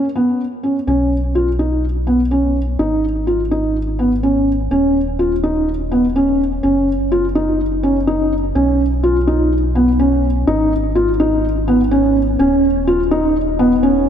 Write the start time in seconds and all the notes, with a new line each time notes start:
0.16 B3
0.63 C#4
0.87 B1 C#4
1.35 F4
1.59 D#4
2.07 B3
2.31 C#4
2.79 G#1 D#4
3.27 F4
3.51 D#4
3.99 B3
4.23 C#4
4.71 D#1 C#4
5.19 F4
5.43 D#4
5.91 B3
6.16 C#4
6.63 F#1 C#4
7.12 F4
7.35 D#4
7.83 C#4
8.07 D#4
8.55 B1 C#4
9.03 F4
9.27 D#4
9.75 B3
9.99 C#4
10.47 G#1 D#4
10.95 F4
11.20 D#4
11.68 B3
11.91 C#4
12.39 D#1 C#4
12.87 F4
13.11 D#4
13.59 B3
13.83 C#4